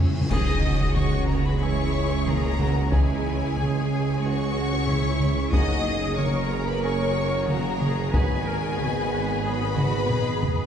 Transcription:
0.00 0.29 C#4 medium
0.00 0.30 E4 medium
0.00 0.27 G#4 loud
0.00 0.28 C#5 medium
0.00 reverse cymbal medium
0.07 0.12 C#3 medium
0.13 0.20 C#3 loud
0.21 0.28 C#3 loud
0.29 5.48 C#2 medium
0.29 5.48 E3 medium
0.29 0.53 E3 medium
0.29 0.52 G#3 medium
0.29 5.48 G#3 medium
0.29 5.48 C#4 medium
0.29 0.92 D#4 medium
0.29 5.48 G#4 medium
0.29 0.61 G#4 medium
0.29 0.54 G#4 medium
0.29 5.48 C#5 medium
0.29 0.92 D#5 medium
0.29 0.91 D#6 loud
0.29 concert bass drum medium
0.29 taiko loud
0.29 crash medium
0.29 impact medium
0.64 1.59 F#4 medium
0.95 1.28 C#4 medium
0.95 1.28 C#5 medium
0.95 1.27 C#6 medium
0.95 taiko mid medium
1.27 1.45 A#3 medium
1.27 1.45 A#4 medium
1.27 1.44 A#5 medium
1.45 1.61 B3 medium
1.45 1.61 B4 medium
1.45 1.62 B5 medium
1.59 1.83 E3 medium
1.59 1.83 G#3 medium
1.59 2.26 C#4 medium
1.59 2.25 E4 medium
1.59 1.84 G#4 medium
1.59 2.26 C#5 medium
1.59 2.27 C#6 medium
2.26 2.90 A#3 medium
2.26 2.59 G#4 medium
2.26 2.92 A#4 medium
2.26 2.92 A#5 loud
2.26 taiko mid medium
2.58 2.91 F#4 medium
2.58 taiko mid medium
2.89 3.12 E3 medium
2.89 3.12 G#3 medium
2.89 3.55 E4 medium
2.89 3.14 G#4 medium
2.89 4.20 G#4 medium
2.89 4.22 G#5 medium
2.89 taiko loud
2.93 4.23 G#3 medium
3.55 4.21 G#4 medium
3.55 taiko mid medium
4.21 4.45 E3 medium
4.21 4.45 G#3 medium
4.21 5.53 C#4 loud
4.21 4.86 F#4 medium
4.21 4.45 G#4 medium
4.21 5.52 C#5 medium
4.21 5.52 C#6 loud
4.87 5.52 E4 medium
4.87 taiko mid medium
5.20 taiko mid soft
5.51 8.09 F#1 medium
5.51 8.15 F#1 medium
5.51 5.75 F#3 medium
5.51 8.13 A#3 medium
5.51 8.09 A#3 medium
5.51 5.75 A#3 medium
5.51 6.16 D#4 loud
5.51 10.66 F#4 medium
5.51 5.85 F#4 medium
5.51 10.66 G#4 medium
5.51 5.75 G#4 medium
5.51 10.66 G#4 medium
5.51 8.09 C#5 medium
5.51 6.16 D#5 loud
5.51 6.16 D#6 loud
5.51 taiko loud
5.85 6.18 G#4 medium
6.17 6.50 C#4 medium
6.17 7.48 A#4 medium
6.17 6.50 C#5 medium
6.17 6.50 C#6 medium
6.17 taiko mid medium
6.51 6.67 A#3 medium
6.51 6.67 A#4 medium
6.51 6.67 A#5 medium
6.67 6.83 B3 medium
6.67 6.83 B4 medium
6.67 6.83 B5 medium
6.82 7.05 F#3 medium
6.82 7.05 A#3 medium
6.82 7.49 C#4 medium
6.82 7.06 G#4 medium
6.82 7.49 C#5 medium
6.82 7.47 C#6 medium
7.47 7.98 A#3 medium
7.47 7.81 F#4 medium
7.47 8.13 A#4 medium
7.47 8.12 A#5 medium
7.47 taiko mid medium
7.80 8.12 G#4 medium
7.80 taiko mid soft
8.11 10.57 G#1 medium
8.11 10.66 G#1 medium
8.11 8.36 F#3 medium
8.11 9.42 G#3 loud
8.11 10.66 B3 medium
8.11 8.36 B3 medium
8.11 10.66 B3 medium
8.11 8.37 G#4 medium
8.11 9.42 G#4 medium
8.11 8.45 B4 medium
8.11 10.66 D#5 medium
8.11 9.43 G#5 loud
8.11 taiko medium
8.46 8.78 A#4 medium
8.79 9.44 B4 medium
8.79 taiko mid medium
9.43 9.66 F#3 medium
9.43 9.67 B3 medium
9.43 10.66 B3 loud
9.43 9.75 G#4 medium
9.43 9.66 G#4 medium
9.43 10.66 B4 loud
9.43 10.66 B5 loud
9.76 10.08 F#4 medium
9.76 taiko mid medium
10.09 10.66 G#4 medium
10.09 taiko low-mid medium
10.43 taiko low medium

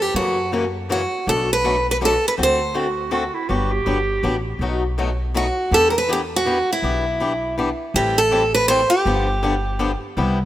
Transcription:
0.02 0.16 G4 medium
0.14 1.04 F#2 medium
0.14 0.36 C#3 medium
0.14 0.37 E3 medium
0.14 0.37 A#3 medium
0.14 0.37 C#4 medium
0.14 0.50 F#4 medium
0.14 0.37 F#4 medium
0.52 0.63 C#3 medium
0.52 0.64 E3 medium
0.52 0.64 A#3 medium
0.52 0.64 C#4 medium
0.52 0.64 F#4 medium
0.89 1.00 C#3 medium
0.89 1.01 E3 medium
0.89 1.01 A#3 medium
0.89 1.01 C#4 medium
0.89 1.01 F#4 medium
0.89 1.29 F#4 medium
1.27 2.16 B1 medium
1.27 1.48 B2 medium
1.27 1.48 F#3 medium
1.27 1.48 A3 medium
1.27 1.48 D4 medium
1.27 1.48 F#4 medium
1.27 1.51 A4 medium
1.53 1.86 B4 medium
1.64 1.75 B2 medium
1.64 1.75 F#3 medium
1.64 1.75 A3 medium
1.64 1.75 D4 medium
1.64 1.76 F#4 medium
1.91 1.96 B4 medium
2.01 2.12 B2 medium
2.01 2.12 F#3 medium
2.01 2.12 A3 medium
2.01 2.13 D4 medium
2.01 2.13 F#4 medium
2.05 2.26 A4 medium
2.28 2.33 B4 medium
2.37 3.27 D2 medium
2.37 2.58 D3 medium
2.37 2.59 A3 medium
2.37 2.59 C4 medium
2.37 2.59 F#4 medium
2.37 2.59 A4 medium
2.43 2.75 C5 medium
2.74 2.86 D3 medium
2.74 2.86 A3 medium
2.74 2.86 C4 medium
2.74 2.86 F#4 medium
2.74 3.10 F#4 medium
2.74 2.86 A4 medium
3.11 3.23 D3 medium
3.11 3.23 A3 medium
3.11 3.23 C4 medium
3.11 3.23 F#4 medium
3.11 3.35 F#4 medium
3.11 3.23 A4 medium
3.34 3.50 E4 medium
3.48 3.79 G1 medium
3.48 3.70 D3 medium
3.48 3.70 F#3 medium
3.48 3.70 B3 medium
3.48 3.70 D4 medium
3.48 3.73 F#4 medium
3.48 3.71 G4 medium
3.72 4.46 G4 medium
3.86 4.18 G1 medium
3.86 3.97 D3 medium
3.86 3.97 F#3 medium
3.86 3.97 B3 medium
3.86 3.98 D4 medium
3.86 3.98 G4 medium
4.23 4.55 A1 medium
4.23 4.34 D3 medium
4.23 4.35 F#3 medium
4.23 4.35 B3 medium
4.23 4.35 D4 medium
4.23 4.35 G4 medium
4.59 5.49 B1 medium
4.59 4.82 B2 medium
4.59 4.82 F#3 medium
4.59 4.82 A3 medium
4.59 4.82 D#4 medium
4.59 4.82 F#4 medium
4.98 5.09 B2 medium
4.98 5.09 F#3 medium
4.98 5.09 A3 medium
4.98 5.09 D#4 medium
4.98 5.10 F#4 medium
5.34 5.46 B2 medium
5.34 5.46 F#3 medium
5.34 5.46 A3 medium
5.34 5.46 D#4 medium
5.34 5.46 F#4 medium
5.34 5.74 F#4 medium
5.71 6.61 E2 medium
5.71 5.93 E3 medium
5.71 5.93 B3 medium
5.71 5.93 D4 medium
5.71 5.93 G4 medium
5.71 5.90 A4 medium
5.90 5.95 A#4 medium
5.98 6.10 B4 medium
6.08 6.20 E3 medium
6.08 6.20 B3 medium
6.08 6.20 D4 medium
6.08 6.20 G4 medium
6.13 6.18 G4 medium
6.36 6.72 F#4 medium
6.45 6.57 E3 medium
6.45 6.57 B3 medium
6.45 6.57 D4 medium
6.45 6.58 G4 medium
6.73 7.55 E4 medium
6.82 7.72 B1 medium
6.82 7.04 E3 medium
6.82 7.04 B3 medium
6.82 7.04 D4 medium
6.82 7.04 G4 medium
7.20 7.31 E3 medium
7.20 7.31 B3 medium
7.20 7.32 D4 medium
7.20 7.32 G4 medium
7.58 7.68 E3 medium
7.58 7.69 B3 medium
7.58 7.69 D4 medium
7.58 7.69 G4 medium
7.94 8.83 A1 medium
7.94 8.16 E3 medium
7.94 8.16 G3 medium
7.94 8.16 C4 medium
7.94 8.16 E4 medium
7.94 8.18 G4 medium
7.94 8.16 A4 medium
8.18 8.52 A4 medium
8.31 8.42 E3 medium
8.31 8.43 G3 medium
8.31 8.43 C4 medium
8.31 8.43 E4 medium
8.31 8.43 A4 medium
8.54 8.68 B4 medium
8.68 8.80 E3 medium
8.68 8.80 G3 medium
8.68 8.80 C4 medium
8.68 8.80 E4 loud
8.68 8.81 A4 medium
8.68 8.89 C5 medium
8.90 9.97 G4 medium
9.05 9.94 G1 medium
9.05 9.26 D3 medium
9.05 9.26 F3 medium
9.05 9.27 B3 medium
9.05 9.27 D4 medium
9.05 9.27 G4 medium
9.43 9.54 D3 medium
9.43 9.54 F3 medium
9.43 9.54 B3 medium
9.43 9.54 D4 medium
9.43 9.54 G4 medium
9.79 9.90 D3 medium
9.79 9.90 F3 medium
9.79 9.90 B3 medium
9.79 9.91 D4 medium
9.79 9.91 G4 medium
10.17 10.45 C2 medium
10.17 10.37 C3 medium
10.17 10.38 G3 medium
10.17 10.38 B3 medium
10.17 10.38 E4 medium
10.17 10.38 G4 medium

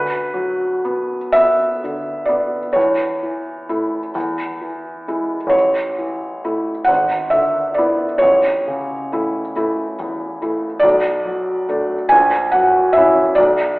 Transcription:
0.00 2.68 D2 soft
0.00 1.34 B4 medium
0.34 1.16 F#3 soft
0.85 1.32 B3 soft
1.32 1.80 B3 soft
1.32 2.28 E5 medium
1.84 2.57 D3 soft
2.25 2.71 B3 soft
2.25 2.73 D5 soft
2.73 4.11 E2 soft
2.73 4.13 C#5 medium
3.23 3.97 E3 soft
3.69 4.11 A3 soft
3.69 4.11 E4 soft
4.15 5.49 E2 soft
4.61 5.35 E3 soft
5.08 5.50 G#3 soft
5.08 5.50 E4 soft
5.47 6.81 A1 soft
5.47 6.87 C#5 medium
5.98 6.70 E3 soft
6.44 6.85 A3 soft
6.44 6.85 E4 soft
6.85 8.18 G#1 soft
6.85 7.31 F#5 medium
7.30 8.04 D3 soft
7.30 7.76 E5 medium
7.74 8.18 B3 soft
7.74 8.21 D5 medium
7.79 8.19 E4 soft
8.18 10.79 A1 soft
8.18 10.81 C#5 medium
8.67 9.39 C#3 soft
9.12 9.52 A3 soft
9.12 9.53 E4 soft
9.56 9.95 A3 soft
9.56 9.95 E4 soft
9.99 10.67 E2 soft
10.42 10.79 A3 soft
10.42 10.80 E4 soft
10.79 12.08 B1 soft
10.79 12.10 D5 medium
11.25 11.94 F#3 soft
11.69 12.08 A3 soft
11.69 12.08 D4 soft
12.09 13.34 A#1 soft
12.09 12.53 G#5 medium
12.52 13.21 F#3 soft
12.52 12.94 F#5 medium
12.93 13.36 E5 medium
12.97 13.34 C#4 soft
12.97 13.34 E4 soft
13.35 13.79 B1 medium
13.35 13.79 D5 medium

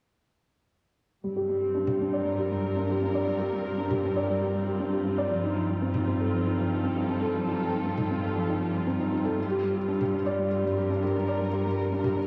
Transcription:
1.24 5.28 G2 medium
1.24 12.27 G3 medium
1.24 1.31 G3 medium
1.29 12.27 C4 medium
1.36 1.49 G4 medium
1.49 1.61 G3 medium
1.62 1.74 G4 medium
1.75 1.87 D4 medium
1.80 12.27 F4 medium
1.87 2.00 G4 medium
1.87 mid tom medium
2.00 2.07 D4 medium
2.12 5.31 A#4 medium
2.12 2.25 D5 medium
2.25 2.33 G3 medium
2.38 2.50 G4 medium
2.51 2.63 G3 medium
2.64 2.76 G4 medium
2.77 2.89 D4 medium
2.89 3.01 G4 medium
3.02 3.09 D4 medium
3.14 3.27 D5 medium
3.27 3.35 G3 medium
3.40 3.52 G4 medium
3.53 3.65 G3 medium
3.65 3.77 G4 medium
3.78 3.90 D4 medium
3.91 4.03 G4 medium
3.91 mid tom medium
4.03 4.11 D4 medium
4.16 4.28 D5 medium
4.29 4.36 G3 medium
4.41 4.54 G4 medium
4.54 4.66 G3 medium
4.67 4.79 G4 medium
4.80 4.92 D4 medium
4.93 5.05 G4 medium
5.05 5.12 D4 medium
5.18 5.30 D5 medium
5.31 9.35 G2 medium
5.31 5.38 F3 medium
5.44 5.56 D#4 medium
5.57 5.68 F3 medium
5.69 5.81 D#4 medium
5.82 5.94 C4 medium
5.94 6.07 D#4 medium
5.94 mid tom medium
6.08 6.15 C4 medium
6.20 6.32 A4 medium
6.33 6.40 F3 medium
6.46 6.57 D#4 medium
6.56 6.70 F3 medium
6.56 9.38 A4 medium
6.71 6.83 D#4 medium
6.84 6.96 C4 medium
6.96 7.08 D#4 medium
7.09 7.16 C4 medium
7.22 7.34 A4 medium
7.34 7.41 F3 medium
7.47 7.59 D#4 medium
7.60 7.72 F3 medium
7.73 7.85 D#4 medium
7.85 7.97 C4 medium
7.98 8.10 D#4 medium
7.98 mid tom medium
8.11 8.18 C4 medium
8.23 8.35 A4 medium
8.36 8.43 F3 medium
8.49 8.61 D#4 medium
8.62 8.73 F3 medium
8.74 8.86 D#4 medium
8.87 8.99 C4 medium
9.00 9.12 D#4 medium
9.12 9.19 C4 medium
9.25 9.37 A4 medium
9.37 12.27 G2 medium
9.37 9.45 G3 medium
9.50 9.62 G4 medium
9.63 9.75 G3 medium
9.76 9.88 G4 medium
9.88 10.00 D4 medium
10.01 10.13 G4 medium
10.01 mid tom soft
10.14 10.21 D4 medium
10.26 10.38 D5 medium
10.39 10.46 G3 medium
10.52 10.64 G4 medium
10.63 10.77 G3 medium
10.63 12.27 A#4 medium
10.77 10.89 G4 medium
10.90 11.02 D4 medium
11.03 11.15 G4 medium
11.16 11.23 D4 medium
11.28 11.40 D5 medium
11.41 11.48 G3 medium
11.53 11.66 G4 medium
11.66 11.78 G3 medium
11.79 11.91 G4 medium
11.92 12.04 D4 medium
12.04 12.16 G4 medium
12.04 mid tom medium
12.17 12.24 D4 medium

